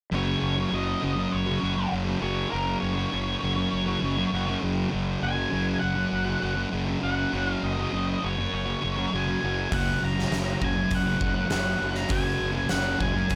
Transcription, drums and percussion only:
9.72 kick, open hi-hat
10.19 snare
10.32 snare, open hi-hat
10.62 kick
10.91 kick, open hi-hat
11.21 kick
11.50 snare, open hi-hat
11.95 snare
12.09 kick, open hi-hat
12.69 snare, open hi-hat
13.01 kick
13.30 kick, open hi-hat

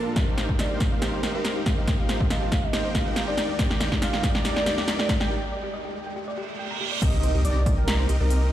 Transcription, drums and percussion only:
0.16 kick, snare, closed hi-hat
0.38 snare, closed hi-hat
0.49 kick
0.59 snare, closed hi-hat
0.80 kick, snare, closed hi-hat
1.02 snare, closed hi-hat
1.23 snare, closed hi-hat
1.45 snare, closed hi-hat
1.66 kick, snare, closed hi-hat
1.87 kick, snare, closed hi-hat
2.09 snare, closed hi-hat
2.20 kick
2.30 snare, closed hi-hat
2.52 kick, snare, closed hi-hat
2.73 snare, closed hi-hat
2.95 kick, snare, closed hi-hat
3.16 snare, closed hi-hat
3.38 snare, closed hi-hat
3.59 kick, snare, closed hi-hat
3.71 snare
3.81 snare, closed hi-hat
3.92 kick, snare
4.02 snare, closed hi-hat
4.13 snare
4.23 kick, snare, closed hi-hat
4.35 snare
4.45 snare, closed hi-hat
4.56 snare
4.66 snare, closed hi-hat
4.78 snare
4.88 snare, closed hi-hat
4.99 snare
5.09 kick, snare, closed hi-hat
5.21 snare
7.02 kick, closed hi-hat, crash
7.23 closed hi-hat
7.45 closed hi-hat
7.66 kick, closed hi-hat
7.88 snare, closed hi-hat
8.09 closed hi-hat
8.30 closed hi-hat

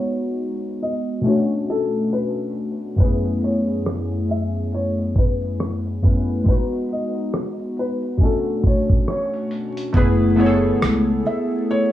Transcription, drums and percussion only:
2.98 kick, closed hi-hat
3.25 closed hi-hat
3.42 closed hi-hat
3.67 closed hi-hat
3.86 cross-stick, closed hi-hat
4.12 closed hi-hat
4.29 closed hi-hat
4.55 closed hi-hat
4.73 closed hi-hat
4.99 closed hi-hat
5.16 kick, closed hi-hat
5.42 closed hi-hat
5.60 cross-stick, closed hi-hat
5.85 closed hi-hat
6.03 kick, closed hi-hat
6.29 closed hi-hat
6.46 kick, closed hi-hat
6.72 closed hi-hat
6.89 closed hi-hat
7.15 closed hi-hat
7.34 cross-stick, closed hi-hat
7.60 closed hi-hat
7.77 closed hi-hat
8.03 closed hi-hat
8.19 kick, closed hi-hat
8.47 closed hi-hat
8.64 kick, closed hi-hat
8.90 kick, closed hi-hat
9.08 cross-stick, closed hi-hat
9.33 closed hi-hat
9.51 closed hi-hat
9.77 closed hi-hat
9.94 kick
10.82 cross-stick

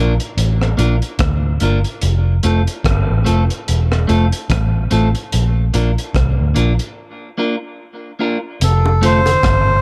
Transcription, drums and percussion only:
0.20 closed hi-hat
0.38 closed hi-hat
0.61 cross-stick
0.79 closed hi-hat
1.02 closed hi-hat
1.19 kick, cross-stick, closed hi-hat
1.60 closed hi-hat
1.84 closed hi-hat
2.02 closed hi-hat
2.43 closed hi-hat
2.67 closed hi-hat
2.85 kick, cross-stick, closed hi-hat
3.26 closed hi-hat
3.50 closed hi-hat
3.68 closed hi-hat
3.92 cross-stick
4.09 closed hi-hat
4.32 closed hi-hat
4.50 kick, cross-stick, closed hi-hat
4.91 closed hi-hat
5.15 closed hi-hat
5.32 closed hi-hat
5.74 closed hi-hat
5.98 closed hi-hat
6.15 kick, cross-stick, closed hi-hat
6.56 closed hi-hat
6.79 closed hi-hat
8.61 closed hi-hat
8.86 high bongo
9.03 closed hi-hat
9.26 closed hi-hat, high bongo
9.43 kick, cross-stick, closed hi-hat, high bongo

